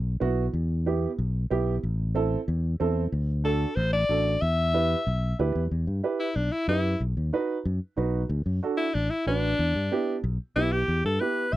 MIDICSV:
0, 0, Header, 1, 4, 480
1, 0, Start_track
1, 0, Key_signature, 1, "minor"
1, 0, Tempo, 323276
1, 803, Time_signature, 4, 2, 24, 8
1, 8484, Key_signature, 1, "minor"
1, 17175, End_track
2, 0, Start_track
2, 0, Title_t, "Upright piano"
2, 0, Program_c, 0, 0
2, 302, Note_on_c, 0, 59, 86
2, 314, Note_on_c, 0, 64, 77
2, 318, Note_on_c, 0, 66, 98
2, 649, Note_off_c, 0, 59, 0
2, 655, Note_off_c, 0, 64, 0
2, 657, Note_off_c, 0, 66, 0
2, 1282, Note_on_c, 0, 59, 83
2, 1283, Note_on_c, 0, 64, 76
2, 1288, Note_on_c, 0, 67, 90
2, 1619, Note_off_c, 0, 59, 0
2, 1620, Note_off_c, 0, 64, 0
2, 1622, Note_off_c, 0, 67, 0
2, 2235, Note_on_c, 0, 59, 82
2, 2243, Note_on_c, 0, 64, 81
2, 2245, Note_on_c, 0, 67, 97
2, 2576, Note_off_c, 0, 59, 0
2, 2580, Note_off_c, 0, 64, 0
2, 2581, Note_off_c, 0, 67, 0
2, 3188, Note_on_c, 0, 60, 86
2, 3197, Note_on_c, 0, 64, 80
2, 3200, Note_on_c, 0, 69, 101
2, 3532, Note_off_c, 0, 60, 0
2, 3537, Note_off_c, 0, 64, 0
2, 3538, Note_off_c, 0, 69, 0
2, 4156, Note_on_c, 0, 60, 88
2, 4159, Note_on_c, 0, 64, 75
2, 4166, Note_on_c, 0, 69, 97
2, 4496, Note_off_c, 0, 60, 0
2, 4498, Note_off_c, 0, 64, 0
2, 4501, Note_off_c, 0, 69, 0
2, 5106, Note_on_c, 0, 62, 75
2, 5116, Note_on_c, 0, 66, 68
2, 5122, Note_on_c, 0, 69, 85
2, 5451, Note_off_c, 0, 62, 0
2, 5456, Note_off_c, 0, 66, 0
2, 5459, Note_off_c, 0, 69, 0
2, 6074, Note_on_c, 0, 62, 77
2, 6079, Note_on_c, 0, 66, 67
2, 6089, Note_on_c, 0, 69, 85
2, 6415, Note_off_c, 0, 62, 0
2, 6418, Note_off_c, 0, 66, 0
2, 6422, Note_off_c, 0, 69, 0
2, 7029, Note_on_c, 0, 64, 79
2, 7038, Note_on_c, 0, 67, 62
2, 7044, Note_on_c, 0, 71, 83
2, 7373, Note_off_c, 0, 64, 0
2, 7377, Note_off_c, 0, 67, 0
2, 7380, Note_off_c, 0, 71, 0
2, 8003, Note_on_c, 0, 64, 85
2, 8009, Note_on_c, 0, 67, 76
2, 8014, Note_on_c, 0, 71, 89
2, 8340, Note_off_c, 0, 64, 0
2, 8343, Note_off_c, 0, 67, 0
2, 8345, Note_off_c, 0, 71, 0
2, 8957, Note_on_c, 0, 64, 81
2, 8962, Note_on_c, 0, 67, 77
2, 8971, Note_on_c, 0, 71, 91
2, 9298, Note_off_c, 0, 64, 0
2, 9300, Note_off_c, 0, 67, 0
2, 9304, Note_off_c, 0, 71, 0
2, 9923, Note_on_c, 0, 64, 66
2, 9926, Note_on_c, 0, 67, 63
2, 9935, Note_on_c, 0, 71, 72
2, 10261, Note_off_c, 0, 64, 0
2, 10262, Note_off_c, 0, 67, 0
2, 10267, Note_off_c, 0, 71, 0
2, 10881, Note_on_c, 0, 63, 89
2, 10886, Note_on_c, 0, 66, 75
2, 10894, Note_on_c, 0, 71, 100
2, 11221, Note_off_c, 0, 63, 0
2, 11223, Note_off_c, 0, 66, 0
2, 11227, Note_off_c, 0, 71, 0
2, 11828, Note_on_c, 0, 63, 85
2, 11837, Note_on_c, 0, 66, 77
2, 11841, Note_on_c, 0, 71, 84
2, 12174, Note_off_c, 0, 63, 0
2, 12179, Note_off_c, 0, 66, 0
2, 12181, Note_off_c, 0, 71, 0
2, 12810, Note_on_c, 0, 62, 85
2, 12813, Note_on_c, 0, 66, 83
2, 12824, Note_on_c, 0, 69, 87
2, 13146, Note_off_c, 0, 62, 0
2, 13147, Note_off_c, 0, 66, 0
2, 13153, Note_off_c, 0, 69, 0
2, 13757, Note_on_c, 0, 62, 72
2, 13765, Note_on_c, 0, 66, 62
2, 13770, Note_on_c, 0, 71, 79
2, 14099, Note_off_c, 0, 62, 0
2, 14103, Note_off_c, 0, 66, 0
2, 14106, Note_off_c, 0, 71, 0
2, 14724, Note_on_c, 0, 59, 87
2, 14727, Note_on_c, 0, 64, 77
2, 14734, Note_on_c, 0, 67, 96
2, 15063, Note_off_c, 0, 59, 0
2, 15064, Note_off_c, 0, 64, 0
2, 15067, Note_off_c, 0, 67, 0
2, 15678, Note_on_c, 0, 59, 71
2, 15684, Note_on_c, 0, 64, 63
2, 15691, Note_on_c, 0, 67, 76
2, 16019, Note_off_c, 0, 59, 0
2, 16022, Note_off_c, 0, 64, 0
2, 16026, Note_off_c, 0, 67, 0
2, 16640, Note_on_c, 0, 59, 69
2, 16642, Note_on_c, 0, 64, 62
2, 16648, Note_on_c, 0, 67, 79
2, 16980, Note_off_c, 0, 59, 0
2, 16981, Note_off_c, 0, 64, 0
2, 16983, Note_off_c, 0, 67, 0
2, 17175, End_track
3, 0, Start_track
3, 0, Title_t, "Alto saxophone"
3, 0, Program_c, 1, 65
3, 5118, Note_on_c, 1, 69, 88
3, 5578, Note_on_c, 1, 72, 90
3, 5600, Note_off_c, 1, 69, 0
3, 5826, Note_off_c, 1, 72, 0
3, 5835, Note_on_c, 1, 74, 117
3, 6550, Note_on_c, 1, 76, 105
3, 6573, Note_off_c, 1, 74, 0
3, 7998, Note_off_c, 1, 76, 0
3, 9201, Note_on_c, 1, 64, 85
3, 9437, Note_on_c, 1, 62, 80
3, 9459, Note_off_c, 1, 64, 0
3, 9679, Note_on_c, 1, 64, 93
3, 9701, Note_off_c, 1, 62, 0
3, 9915, Note_off_c, 1, 64, 0
3, 9925, Note_on_c, 1, 64, 95
3, 10392, Note_off_c, 1, 64, 0
3, 13027, Note_on_c, 1, 64, 93
3, 13272, Note_on_c, 1, 62, 90
3, 13294, Note_off_c, 1, 64, 0
3, 13510, Note_on_c, 1, 64, 98
3, 13532, Note_off_c, 1, 62, 0
3, 13752, Note_off_c, 1, 64, 0
3, 13770, Note_on_c, 1, 62, 105
3, 15166, Note_off_c, 1, 62, 0
3, 15681, Note_on_c, 1, 64, 108
3, 15922, Note_on_c, 1, 67, 94
3, 15945, Note_off_c, 1, 64, 0
3, 16391, Note_off_c, 1, 67, 0
3, 16416, Note_on_c, 1, 69, 93
3, 16638, Note_on_c, 1, 71, 83
3, 16660, Note_off_c, 1, 69, 0
3, 17119, Note_on_c, 1, 76, 87
3, 17141, Note_off_c, 1, 71, 0
3, 17175, Note_off_c, 1, 76, 0
3, 17175, End_track
4, 0, Start_track
4, 0, Title_t, "Fingered electric bass"
4, 0, Program_c, 2, 33
4, 0, Note_on_c, 2, 35, 95
4, 223, Note_off_c, 2, 35, 0
4, 317, Note_on_c, 2, 35, 94
4, 704, Note_off_c, 2, 35, 0
4, 793, Note_on_c, 2, 40, 93
4, 1566, Note_off_c, 2, 40, 0
4, 1759, Note_on_c, 2, 35, 94
4, 2145, Note_off_c, 2, 35, 0
4, 2245, Note_on_c, 2, 35, 93
4, 2629, Note_off_c, 2, 35, 0
4, 2723, Note_on_c, 2, 33, 106
4, 3492, Note_off_c, 2, 33, 0
4, 3681, Note_on_c, 2, 40, 101
4, 4066, Note_off_c, 2, 40, 0
4, 4164, Note_on_c, 2, 40, 92
4, 4548, Note_off_c, 2, 40, 0
4, 4638, Note_on_c, 2, 38, 97
4, 5408, Note_off_c, 2, 38, 0
4, 5597, Note_on_c, 2, 33, 109
4, 5984, Note_off_c, 2, 33, 0
4, 6075, Note_on_c, 2, 33, 93
4, 6463, Note_off_c, 2, 33, 0
4, 6562, Note_on_c, 2, 40, 107
4, 7331, Note_off_c, 2, 40, 0
4, 7523, Note_on_c, 2, 35, 98
4, 7908, Note_off_c, 2, 35, 0
4, 8009, Note_on_c, 2, 38, 94
4, 8223, Note_off_c, 2, 38, 0
4, 8246, Note_on_c, 2, 40, 88
4, 8461, Note_off_c, 2, 40, 0
4, 8484, Note_on_c, 2, 40, 89
4, 8676, Note_off_c, 2, 40, 0
4, 8720, Note_on_c, 2, 43, 87
4, 8914, Note_off_c, 2, 43, 0
4, 9440, Note_on_c, 2, 35, 92
4, 9634, Note_off_c, 2, 35, 0
4, 9914, Note_on_c, 2, 42, 94
4, 10303, Note_off_c, 2, 42, 0
4, 10399, Note_on_c, 2, 35, 99
4, 10594, Note_off_c, 2, 35, 0
4, 10644, Note_on_c, 2, 39, 85
4, 10838, Note_off_c, 2, 39, 0
4, 11365, Note_on_c, 2, 42, 90
4, 11558, Note_off_c, 2, 42, 0
4, 11842, Note_on_c, 2, 35, 88
4, 12229, Note_off_c, 2, 35, 0
4, 12315, Note_on_c, 2, 38, 101
4, 12513, Note_off_c, 2, 38, 0
4, 12557, Note_on_c, 2, 42, 87
4, 12754, Note_off_c, 2, 42, 0
4, 13289, Note_on_c, 2, 33, 102
4, 13481, Note_off_c, 2, 33, 0
4, 13758, Note_on_c, 2, 33, 89
4, 14147, Note_off_c, 2, 33, 0
4, 14240, Note_on_c, 2, 40, 101
4, 14436, Note_off_c, 2, 40, 0
4, 14481, Note_on_c, 2, 43, 89
4, 14676, Note_off_c, 2, 43, 0
4, 15198, Note_on_c, 2, 35, 102
4, 15395, Note_off_c, 2, 35, 0
4, 15680, Note_on_c, 2, 35, 98
4, 16067, Note_off_c, 2, 35, 0
4, 16157, Note_on_c, 2, 40, 104
4, 16353, Note_off_c, 2, 40, 0
4, 16402, Note_on_c, 2, 43, 90
4, 16596, Note_off_c, 2, 43, 0
4, 17118, Note_on_c, 2, 35, 98
4, 17175, Note_off_c, 2, 35, 0
4, 17175, End_track
0, 0, End_of_file